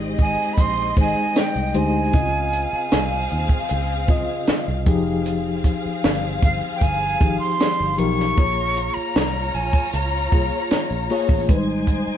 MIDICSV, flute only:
0, 0, Header, 1, 2, 480
1, 0, Start_track
1, 0, Tempo, 779221
1, 1318, Time_signature, 4, 2, 24, 8
1, 7497, End_track
2, 0, Start_track
2, 0, Title_t, "Flute"
2, 0, Program_c, 0, 73
2, 134, Note_on_c, 0, 80, 85
2, 329, Note_on_c, 0, 83, 75
2, 338, Note_off_c, 0, 80, 0
2, 371, Note_on_c, 0, 84, 86
2, 381, Note_off_c, 0, 83, 0
2, 604, Note_off_c, 0, 84, 0
2, 616, Note_on_c, 0, 80, 80
2, 859, Note_on_c, 0, 79, 78
2, 868, Note_off_c, 0, 80, 0
2, 1097, Note_on_c, 0, 80, 81
2, 1106, Note_off_c, 0, 79, 0
2, 2528, Note_off_c, 0, 80, 0
2, 3971, Note_on_c, 0, 77, 80
2, 4014, Note_off_c, 0, 77, 0
2, 4164, Note_on_c, 0, 79, 66
2, 4204, Note_on_c, 0, 80, 80
2, 4213, Note_off_c, 0, 79, 0
2, 4550, Note_off_c, 0, 80, 0
2, 4554, Note_on_c, 0, 84, 88
2, 4917, Note_on_c, 0, 85, 92
2, 4927, Note_off_c, 0, 84, 0
2, 5507, Note_on_c, 0, 82, 83
2, 5517, Note_off_c, 0, 85, 0
2, 5882, Note_on_c, 0, 80, 76
2, 5891, Note_off_c, 0, 82, 0
2, 6116, Note_off_c, 0, 80, 0
2, 6119, Note_on_c, 0, 82, 76
2, 6814, Note_off_c, 0, 82, 0
2, 7497, End_track
0, 0, End_of_file